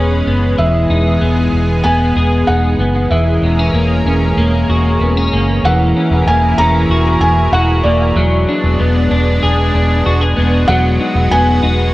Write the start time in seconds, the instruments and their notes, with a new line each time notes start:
Already playing: fingered electric bass E1, clean electric guitar E3 B3 C#4 G#4, analog synth pad G#3 C#4 B4, felt piano C#5
0.27 fingered electric bass F#1, clean electric guitar B3
0.58 fingered electric bass E1, clean electric guitar E3, analog synth pad B3 G#4, felt piano E5
0.89 fingered electric bass E1, clean electric guitar D#4
1.21 fingered electric bass E1, clean electric guitar B3
1.53 fingered electric bass E1
1.84 fingered electric bass E1, clean electric guitar B3, felt piano G#5
2.16 fingered electric bass E1, clean electric guitar G#4
2.47 fingered electric bass E1, clean electric guitar D#4, felt piano F#5
2.78 fingered electric bass F#1, clean electric guitar B3
3.10 fingered electric bass E1, clean electric guitar E3, analog synth pad C#4 G#4 A#4, felt piano E5
3.42 fingered electric bass E1, clean electric guitar B3
3.59 clean electric guitar C#4
3.73 fingered electric bass E1, clean electric guitar A#3
4.05 fingered electric bass E1, clean electric guitar C#4
4.37 fingered electric bass E1, clean electric guitar A#3
4.69 fingered electric bass E1, clean electric guitar F#4
5.01 fingered electric bass E1, clean electric guitar B3
5.17 clean electric guitar C#4
5.33 fingered electric bass F#1, clean electric guitar A#3
5.63 fingered electric bass E1, analog synth pad E3 E4 G#4 A#4, clean electric guitar E3, felt piano F#5
5.96 clean electric guitar C#4
6.11 fingered electric bass E1
6.26 fingered electric bass E1, clean electric guitar A#3, felt piano G#5
6.58 fingered electric bass E1, clean electric guitar C#4, felt piano A#5
6.89 fingered electric bass E1, clean electric guitar F#4
7.20 fingered electric bass E1, felt piano G#5
7.52 fingered electric bass E1, clean electric guitar F#4, felt piano F#5
7.84 fingered electric bass E1, clean electric guitar A#3, felt piano D5
8.15 fingered electric bass E1, clean electric guitar F#3, analog synth pad G#3 B3 D4
8.49 clean electric guitar D4
8.63 fingered electric bass E1
8.80 fingered electric bass E1, clean electric guitar B3
9.11 fingered electric bass E1, clean electric guitar D4
9.43 fingered electric bass E1, clean electric guitar G#4
9.74 fingered electric bass E1, clean electric guitar D4
10.06 fingered electric bass E1, clean electric guitar F#4
10.21 clean electric guitar G#4
10.37 fingered electric bass E1, clean electric guitar B3
10.68 fingered electric bass E1, clean electric guitar F#3, analog synth pad F#4, felt piano F#5
11.00 clean electric guitar D#4
11.15 fingered electric bass E1
11.31 fingered electric bass E1, clean electric guitar B3, felt piano G#5
11.63 fingered electric bass E1, clean electric guitar D#4